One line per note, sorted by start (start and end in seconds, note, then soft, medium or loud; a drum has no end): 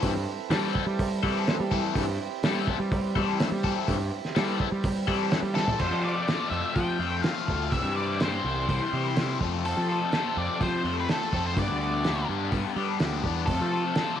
0.00 0.25 G2 medium
0.00 0.12 E3 medium
0.00 0.12 C4 medium
0.00 5.75 C4 medium
0.00 0.11 E4 medium
0.00 5.75 E4 medium
0.00 0.11 A4 loud
0.00 1.91 A4 medium
0.00 5.76 B4 medium
0.00 kick loud
0.00 open hi-hat medium
0.50 0.82 E3 medium
0.50 0.73 G3 medium
0.50 0.83 C4 medium
0.50 0.83 E4 medium
0.50 0.83 A4 medium
0.50 snare loud
0.50 open hi-hat medium
0.75 kick medium
0.86 1.20 G3 medium
0.99 kick medium
0.99 open hi-hat medium
1.23 1.55 E3 medium
1.23 1.46 G3 loud
1.23 1.55 C4 medium
1.23 1.55 E4 medium
1.23 1.54 A4 loud
1.23 kick medium
1.47 snare loud
1.47 open hi-hat medium
1.60 1.82 G3 medium
1.71 2.03 E3 medium
1.71 2.03 C4 medium
1.71 2.03 E4 medium
1.71 2.03 A4 medium
1.71 kick medium
1.95 2.18 G2 medium
1.95 5.77 G4 medium
1.95 kick loud
1.95 open hi-hat medium
2.43 2.75 E3 medium
2.43 2.65 G3 medium
2.43 2.76 C4 medium
2.43 2.76 E4 medium
2.43 2.76 A4 medium
2.43 snare loud
2.43 open hi-hat medium
2.68 kick medium
2.80 3.12 G3 medium
2.92 kick loud
2.92 open hi-hat soft
3.16 3.48 E3 medium
3.16 3.38 G3 loud
3.16 3.48 C4 medium
3.16 3.47 E4 medium
3.16 3.47 A4 medium
3.16 kick medium
3.40 snare loud
3.40 open hi-hat soft
3.52 3.73 G3 medium
3.64 3.96 E3 medium
3.64 3.95 C4 medium
3.64 3.95 E4 medium
3.64 3.95 A4 medium
3.64 kick medium
3.88 4.10 G2 medium
3.88 kick loud
3.88 open hi-hat medium
4.25 snare soft
4.35 4.67 E3 medium
4.35 4.58 G3 medium
4.35 4.67 C4 medium
4.35 4.67 E4 medium
4.35 4.67 A4 medium
4.35 snare loud
4.35 open hi-hat medium
4.60 kick medium
4.72 5.05 G3 medium
4.84 kick loud
4.84 open hi-hat medium
5.07 5.39 E3 medium
5.07 5.29 G3 medium
5.07 5.39 C4 medium
5.07 5.39 E4 medium
5.07 5.39 A4 medium
5.07 kick medium
5.31 snare loud
5.31 open hi-hat soft
5.43 5.65 G3 medium
5.55 5.80 E3 medium
5.55 5.80 C4 medium
5.55 5.80 E4 medium
5.55 5.80 A4 medium
5.55 5.80 A4 loud
5.55 snare medium
5.68 floor tom medium
5.79 6.26 F2 medium
5.79 5.90 F2 medium
5.79 6.26 C3 medium
5.79 6.04 F3 medium
5.79 6.04 A3 medium
5.79 6.03 C4 medium
5.79 6.01 F4 medium
5.79 6.02 C5 medium
5.79 kick medium
5.79 crash medium
5.90 6.13 F3 medium
6.02 6.27 F3 medium
6.02 6.28 A3 medium
6.02 6.30 C4 medium
6.02 6.29 F4 medium
6.02 6.49 D5 medium
6.27 7.23 F2 medium
6.27 7.24 C3 medium
6.27 7.02 F3 medium
6.27 7.01 A3 medium
6.27 7.01 C4 medium
6.27 6.98 F4 medium
6.27 snare medium
6.27 open hi-hat soft
6.50 6.62 F2 medium
6.50 6.76 E5 medium
6.75 6.98 F3 medium
6.75 7.22 G5 medium
6.75 kick medium
6.75 open hi-hat soft
6.99 7.21 F2 medium
6.99 7.24 A3 medium
6.99 7.26 C4 medium
6.99 7.27 F4 medium
7.03 7.23 F3 soft
7.23 7.50 F3 medium
7.23 7.49 A3 medium
7.23 7.73 F5 medium
7.23 snare medium
7.23 open hi-hat soft
7.27 7.49 C4 medium
7.27 7.46 F4 medium
7.48 7.72 D2 medium
7.48 7.72 F3 medium
7.48 7.72 A3 medium
7.48 7.74 C4 medium
7.48 7.70 F4 medium
7.48 kick medium
7.72 7.82 C2 medium
7.72 8.19 C3 medium
7.72 8.20 E3 medium
7.72 7.98 G3 medium
7.72 7.97 C4 medium
7.72 7.94 E5 medium
7.72 kick loud
7.72 open hi-hat soft
7.76 7.95 E4 loud
7.83 8.40 G2 medium
7.96 8.21 G3 medium
7.96 8.23 C4 medium
7.96 8.23 E4 medium
7.96 8.19 D5 medium
8.20 9.16 C3 medium
8.20 9.16 E3 medium
8.20 8.95 G3 medium
8.20 8.93 C4 medium
8.20 8.91 E4 medium
8.20 9.37 C5 medium
8.20 snare loud
8.20 open hi-hat soft
8.44 8.66 C2 medium
8.69 8.79 C2 medium
8.69 kick medium
8.69 open hi-hat soft
8.93 9.37 C3 medium
8.93 9.17 G3 medium
8.93 9.18 C4 medium
8.93 9.20 E4 medium
9.16 9.39 E3 medium
9.16 9.40 G3 medium
9.16 9.40 C4 medium
9.16 snare medium
9.16 open hi-hat soft
9.21 9.40 E4 medium
9.41 9.73 F2 medium
9.41 9.64 F2 medium
9.41 9.65 C3 medium
9.41 9.65 F3 medium
9.41 9.67 A3 medium
9.41 9.67 C4 medium
9.41 9.67 F4 medium
9.41 kick medium
9.65 10.11 F2 medium
9.65 10.11 C3 medium
9.65 9.91 F3 medium
9.65 9.91 A3 medium
9.65 9.89 C4 medium
9.65 9.88 F4 medium
9.65 10.39 A4 medium
9.65 open hi-hat soft
9.77 9.99 F3 medium
9.89 10.12 F3 medium
9.89 10.14 A3 medium
9.89 10.14 C4 medium
9.89 10.14 F4 medium
10.12 11.08 F2 medium
10.12 11.08 C3 medium
10.12 10.87 F3 medium
10.12 10.87 A3 medium
10.12 10.85 C4 medium
10.12 10.83 F4 medium
10.12 snare medium
10.12 open hi-hat soft
10.37 10.47 F2 medium
10.37 10.62 D5 medium
10.61 10.82 F3 medium
10.61 10.95 C5 medium
10.61 kick medium
10.61 open hi-hat soft
10.84 11.06 F2 medium
10.84 11.06 F3 medium
10.84 11.09 A3 medium
10.84 11.09 C4 medium
10.84 11.10 F4 medium
11.00 11.10 B4 medium
11.07 11.33 F3 medium
11.07 11.33 A3 medium
11.07 11.32 C4 medium
11.07 11.30 F4 medium
11.07 11.46 A4 medium
11.07 snare loud
11.07 open hi-hat soft
11.31 11.57 F2 medium
11.31 11.56 F3 medium
11.31 11.58 A3 medium
11.31 11.55 C4 medium
11.31 11.54 F4 medium
11.31 kick medium
11.47 11.57 C5 medium
11.56 12.03 G2 medium
11.56 11.67 G2 medium
11.56 12.04 D3 medium
11.56 11.82 G3 medium
11.56 11.81 B3 medium
11.56 11.79 D4 medium
11.56 11.78 G4 medium
11.56 12.26 D5 medium
11.56 kick medium
11.56 open hi-hat soft
11.68 12.24 D2 medium
11.79 12.05 B3 medium
11.79 12.05 D4 medium
11.79 12.06 G4 medium
11.83 12.04 G3 soft
12.04 13.00 G2 medium
12.04 13.01 D3 medium
12.04 12.78 G3 medium
12.04 12.78 B3 medium
12.04 12.76 D4 medium
12.04 12.75 G4 medium
12.04 snare medium
12.04 open hi-hat soft
12.29 12.51 G2 medium
12.52 12.63 G2 medium
12.52 kick medium
12.52 open hi-hat soft
12.76 12.98 G3 medium
12.76 12.98 G3 soft
12.76 12.99 B3 medium
12.76 13.00 D4 medium
12.76 13.01 G4 medium
12.99 13.22 D2 medium
12.99 13.26 G3 medium
12.99 13.25 B3 medium
12.99 13.23 D4 medium
12.99 13.22 G4 medium
12.99 snare medium
12.99 open hi-hat soft
13.23 13.48 E2 medium
13.23 13.48 G3 medium
13.23 13.48 B3 medium
13.23 13.47 D4 medium
13.23 13.46 G4 medium
13.23 kick medium
13.46 13.59 F2 medium
13.46 13.94 F2 medium
13.46 13.95 C3 medium
13.46 13.74 F3 medium
13.46 14.20 A4 medium
13.46 kick medium
13.46 open hi-hat soft
13.50 13.74 A3 medium
13.50 13.73 C4 medium
13.50 13.70 F4 medium
13.61 13.83 F3 medium
13.72 13.96 F3 medium
13.72 13.96 A3 medium
13.72 13.98 C4 medium
13.72 13.98 F4 medium
13.95 14.20 F2 medium
13.95 14.20 C3 medium
13.95 14.20 F3 medium
13.95 14.20 A3 medium
13.95 14.20 C4 medium
13.95 14.20 F4 medium
13.95 snare medium
13.95 open hi-hat soft
14.16 14.20 D5 medium